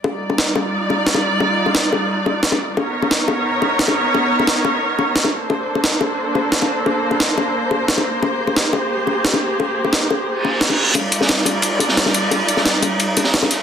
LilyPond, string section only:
\new Staff \with { instrumentName = "String section" } { \time 4/4 \key ees \lydian \tempo 4 = 176 << { <g d''>1~ | <g d''>1 | <b cis''>1~ | <b cis''>2.~ <b cis''>8 <bes c''>8~ |
<bes c''>1~ | <bes c''>1~ | <bes c''>1~ | <bes c''>1 |
<g d''>1~ | <g d''>1 | } \\ { <ees' f'>1~ | <ees' f'>1 | <dis' ais'>1~ | <dis' ais'>2.~ <dis' ais'>8 <d' a'>8~ |
<d' a'>1~ | <d' a'>1 | <g' aes'>1~ | <g' aes'>1 |
<ees' f'>1~ | <ees' f'>1 | } >> }